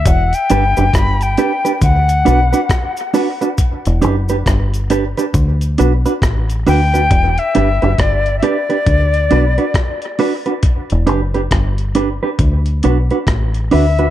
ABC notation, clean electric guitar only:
X:1
M:4/4
L:1/16
Q:"Swing 16ths" 1/4=68
K:Em
V:1 name="Clean electric guitar"
z2 [DGB] [DGB] z2 [DGB] [DGB] z2 [DFB] [DFB] z2 [DFB] [DFB] | z2 [DGB] [DGB] z2 [DGB] [DGB] z2 [DFB] [DFB] z2 [DFB] [DFB] | z2 [DGB] [DGB] z2 [DGB] [DGB] z2 [DFB] [DFB] z2 [DFB] [DFB] | z2 [DGB] [DGB] z2 [DGB] [DGB] z2 [DFB] [DFB] z2 [DFB] [DFB] |]